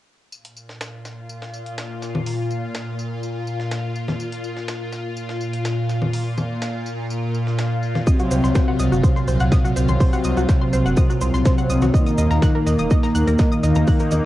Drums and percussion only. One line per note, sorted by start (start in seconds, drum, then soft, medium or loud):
0.33 tambourine medium
0.45 closed hi-hat soft
0.57 tambourine medium
0.69 snare soft
0.81 snare loud
0.81 tambourine medium
1.05 snare medium
1.05 tambourine medium
1.29 tambourine medium
1.42 snare medium
1.54 tambourine medium
1.66 closed hi-hat soft
1.78 snare loud
1.78 tambourine medium
2.02 snare soft
2.02 tambourine medium
2.15 low conga medium
2.26 open hi-hat medium
2.50 tambourine medium
2.75 snare loud
2.75 tambourine medium
2.99 tambourine medium
3.23 tambourine medium
3.47 tambourine medium
3.60 snare soft
3.71 snare loud
3.71 tambourine medium
3.96 tambourine medium
4.08 snare soft
4.08 low conga medium
4.20 tambourine medium
4.32 closed hi-hat soft
4.44 tambourine medium
4.57 snare soft
4.68 snare loud
4.68 tambourine medium
4.92 snare medium
4.92 tambourine medium
5.17 tambourine medium
5.29 snare medium
5.41 tambourine medium
5.53 closed hi-hat soft
5.65 snare loud
5.65 tambourine medium
5.89 snare soft
5.89 tambourine medium
6.02 low conga medium
6.13 open hi-hat medium
6.38 tambourine medium
6.38 low conga medium
6.62 snare loud
6.62 tambourine medium
6.86 tambourine medium
7.10 tambourine medium
7.34 tambourine medium
7.47 snare soft
7.59 snare loud
7.59 tambourine medium
7.83 tambourine medium
7.95 snare soft
7.95 low conga medium
8.07 kick loud
8.07 tambourine medium
8.07 cabasa medium
8.19 closed hi-hat soft
8.19 cabasa soft
8.31 tambourine medium
8.31 cabasa medium
8.44 snare soft
8.44 cabasa soft
8.55 kick loud
8.55 snare loud
8.55 tambourine medium
8.55 cabasa medium
8.79 snare medium
8.79 tambourine medium
8.79 cabasa medium
8.93 cabasa soft
9.04 kick loud
9.04 tambourine medium
9.04 cabasa soft
9.16 snare medium
9.16 cabasa soft
9.28 tambourine medium
9.28 cabasa medium
9.40 closed hi-hat soft
9.40 cabasa soft
9.52 kick loud
9.52 snare loud
9.52 tambourine medium
9.52 cabasa medium
9.65 cabasa soft
9.76 snare soft
9.76 tambourine medium
9.76 cabasa medium
9.88 low conga medium
9.88 cabasa soft
10.00 kick loud
10.00 open hi-hat medium
10.00 cabasa soft
10.13 cabasa soft
10.24 tambourine medium
10.24 cabasa medium
10.37 cabasa soft
10.49 kick loud
10.49 snare loud
10.49 tambourine medium
10.49 cabasa medium
10.73 tambourine medium
10.73 cabasa medium
10.86 cabasa soft
10.97 kick loud
10.97 tambourine medium
10.97 cabasa medium
11.10 cabasa soft
11.21 tambourine medium
11.21 cabasa medium
11.34 snare soft
11.34 cabasa soft
11.45 kick loud
11.45 snare loud
11.45 tambourine medium
11.45 cabasa soft
11.58 cabasa soft
11.70 tambourine medium
11.70 cabasa medium
11.82 snare soft
11.82 low conga medium
11.82 cabasa soft
11.94 kick loud
11.94 tambourine medium
11.94 cabasa soft
12.06 closed hi-hat soft
12.06 cabasa soft
12.18 tambourine medium
12.18 cabasa medium
12.31 snare soft
12.31 cabasa soft
12.42 kick loud
12.42 snare loud
12.42 tambourine medium
12.42 cabasa soft
12.66 snare medium
12.66 tambourine medium
12.66 cabasa medium
12.79 cabasa soft
12.90 kick loud
12.90 tambourine medium
12.90 cabasa soft
13.03 snare medium
13.03 cabasa soft
13.15 tambourine medium
13.15 cabasa medium
13.27 closed hi-hat soft
13.27 cabasa soft
13.38 kick loud
13.38 snare loud
13.38 tambourine medium
13.38 cabasa soft
13.52 cabasa soft
13.63 snare soft
13.63 tambourine medium
13.63 cabasa medium
13.75 low conga medium
13.75 cabasa soft
13.87 kick loud
13.87 open hi-hat medium
13.87 cabasa soft
13.99 cabasa soft
14.11 tambourine medium
14.11 low conga medium
14.11 cabasa medium